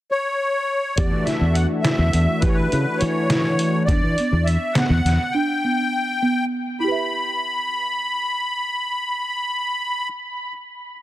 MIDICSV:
0, 0, Header, 1, 6, 480
1, 0, Start_track
1, 0, Tempo, 581395
1, 808, Time_signature, 5, 3, 24, 8
1, 9100, End_track
2, 0, Start_track
2, 0, Title_t, "Accordion"
2, 0, Program_c, 0, 21
2, 94, Note_on_c, 0, 73, 82
2, 798, Note_on_c, 0, 74, 79
2, 831, Note_off_c, 0, 73, 0
2, 1031, Note_on_c, 0, 76, 76
2, 1049, Note_off_c, 0, 74, 0
2, 1265, Note_on_c, 0, 78, 76
2, 1286, Note_off_c, 0, 76, 0
2, 1378, Note_off_c, 0, 78, 0
2, 1499, Note_on_c, 0, 76, 88
2, 1986, Note_on_c, 0, 71, 80
2, 2006, Note_off_c, 0, 76, 0
2, 2048, Note_on_c, 0, 73, 66
2, 2056, Note_off_c, 0, 71, 0
2, 2098, Note_on_c, 0, 71, 81
2, 2114, Note_off_c, 0, 73, 0
2, 2462, Note_on_c, 0, 73, 90
2, 2484, Note_off_c, 0, 71, 0
2, 3160, Note_off_c, 0, 73, 0
2, 3183, Note_on_c, 0, 74, 98
2, 3667, Note_on_c, 0, 76, 83
2, 3688, Note_off_c, 0, 74, 0
2, 3907, Note_on_c, 0, 78, 96
2, 3923, Note_off_c, 0, 76, 0
2, 4388, Note_on_c, 0, 79, 94
2, 4411, Note_off_c, 0, 78, 0
2, 5325, Note_off_c, 0, 79, 0
2, 5613, Note_on_c, 0, 83, 81
2, 8327, Note_off_c, 0, 83, 0
2, 9100, End_track
3, 0, Start_track
3, 0, Title_t, "Marimba"
3, 0, Program_c, 1, 12
3, 807, Note_on_c, 1, 67, 79
3, 1007, Note_off_c, 1, 67, 0
3, 1044, Note_on_c, 1, 64, 66
3, 1444, Note_off_c, 1, 64, 0
3, 1525, Note_on_c, 1, 64, 82
3, 1924, Note_off_c, 1, 64, 0
3, 2004, Note_on_c, 1, 67, 75
3, 2204, Note_off_c, 1, 67, 0
3, 2250, Note_on_c, 1, 64, 65
3, 2647, Note_off_c, 1, 64, 0
3, 2735, Note_on_c, 1, 64, 80
3, 3130, Note_off_c, 1, 64, 0
3, 3217, Note_on_c, 1, 62, 79
3, 3412, Note_off_c, 1, 62, 0
3, 3465, Note_on_c, 1, 59, 66
3, 3856, Note_off_c, 1, 59, 0
3, 3934, Note_on_c, 1, 59, 77
3, 4330, Note_off_c, 1, 59, 0
3, 4413, Note_on_c, 1, 62, 82
3, 4609, Note_off_c, 1, 62, 0
3, 4660, Note_on_c, 1, 59, 63
3, 5054, Note_off_c, 1, 59, 0
3, 5138, Note_on_c, 1, 59, 79
3, 5533, Note_off_c, 1, 59, 0
3, 5616, Note_on_c, 1, 64, 63
3, 5649, Note_on_c, 1, 67, 63
3, 5680, Note_on_c, 1, 71, 64
3, 5710, Note_on_c, 1, 76, 65
3, 8329, Note_off_c, 1, 64, 0
3, 8363, Note_off_c, 1, 67, 0
3, 8394, Note_off_c, 1, 71, 0
3, 8424, Note_off_c, 1, 76, 0
3, 9100, End_track
4, 0, Start_track
4, 0, Title_t, "Analog synth pad"
4, 0, Program_c, 2, 89
4, 793, Note_on_c, 2, 52, 63
4, 799, Note_on_c, 2, 57, 61
4, 803, Note_on_c, 2, 62, 57
4, 803, Note_on_c, 2, 66, 64
4, 3164, Note_off_c, 2, 52, 0
4, 3167, Note_off_c, 2, 57, 0
4, 3169, Note_off_c, 2, 62, 0
4, 3169, Note_off_c, 2, 66, 0
4, 9100, End_track
5, 0, Start_track
5, 0, Title_t, "Fretless electric bass"
5, 0, Program_c, 3, 35
5, 807, Note_on_c, 3, 40, 98
5, 904, Note_off_c, 3, 40, 0
5, 927, Note_on_c, 3, 52, 69
5, 1024, Note_off_c, 3, 52, 0
5, 1164, Note_on_c, 3, 40, 75
5, 1359, Note_off_c, 3, 40, 0
5, 1640, Note_on_c, 3, 40, 86
5, 1739, Note_off_c, 3, 40, 0
5, 1765, Note_on_c, 3, 40, 76
5, 1862, Note_off_c, 3, 40, 0
5, 2001, Note_on_c, 3, 52, 93
5, 2196, Note_off_c, 3, 52, 0
5, 2252, Note_on_c, 3, 49, 79
5, 2346, Note_off_c, 3, 49, 0
5, 2492, Note_on_c, 3, 52, 88
5, 3205, Note_on_c, 3, 40, 94
5, 3217, Note_off_c, 3, 52, 0
5, 3302, Note_off_c, 3, 40, 0
5, 3328, Note_on_c, 3, 52, 75
5, 3424, Note_off_c, 3, 52, 0
5, 3571, Note_on_c, 3, 40, 89
5, 3762, Note_off_c, 3, 40, 0
5, 4045, Note_on_c, 3, 40, 89
5, 4142, Note_off_c, 3, 40, 0
5, 4169, Note_on_c, 3, 40, 76
5, 4264, Note_off_c, 3, 40, 0
5, 9100, End_track
6, 0, Start_track
6, 0, Title_t, "Drums"
6, 805, Note_on_c, 9, 42, 67
6, 807, Note_on_c, 9, 36, 87
6, 888, Note_off_c, 9, 42, 0
6, 890, Note_off_c, 9, 36, 0
6, 1048, Note_on_c, 9, 38, 31
6, 1048, Note_on_c, 9, 42, 53
6, 1130, Note_off_c, 9, 38, 0
6, 1130, Note_off_c, 9, 42, 0
6, 1283, Note_on_c, 9, 42, 59
6, 1366, Note_off_c, 9, 42, 0
6, 1523, Note_on_c, 9, 38, 104
6, 1523, Note_on_c, 9, 42, 73
6, 1606, Note_off_c, 9, 38, 0
6, 1606, Note_off_c, 9, 42, 0
6, 1762, Note_on_c, 9, 42, 65
6, 1845, Note_off_c, 9, 42, 0
6, 2000, Note_on_c, 9, 42, 73
6, 2003, Note_on_c, 9, 36, 97
6, 2082, Note_off_c, 9, 42, 0
6, 2086, Note_off_c, 9, 36, 0
6, 2247, Note_on_c, 9, 42, 54
6, 2330, Note_off_c, 9, 42, 0
6, 2483, Note_on_c, 9, 42, 57
6, 2565, Note_off_c, 9, 42, 0
6, 2724, Note_on_c, 9, 38, 96
6, 2724, Note_on_c, 9, 42, 78
6, 2806, Note_off_c, 9, 38, 0
6, 2806, Note_off_c, 9, 42, 0
6, 2964, Note_on_c, 9, 42, 63
6, 3047, Note_off_c, 9, 42, 0
6, 3207, Note_on_c, 9, 36, 98
6, 3209, Note_on_c, 9, 42, 73
6, 3289, Note_off_c, 9, 36, 0
6, 3291, Note_off_c, 9, 42, 0
6, 3450, Note_on_c, 9, 42, 51
6, 3532, Note_off_c, 9, 42, 0
6, 3695, Note_on_c, 9, 42, 55
6, 3777, Note_off_c, 9, 42, 0
6, 3924, Note_on_c, 9, 38, 104
6, 3924, Note_on_c, 9, 42, 68
6, 4007, Note_off_c, 9, 38, 0
6, 4007, Note_off_c, 9, 42, 0
6, 4177, Note_on_c, 9, 38, 33
6, 4177, Note_on_c, 9, 42, 60
6, 4260, Note_off_c, 9, 38, 0
6, 4260, Note_off_c, 9, 42, 0
6, 9100, End_track
0, 0, End_of_file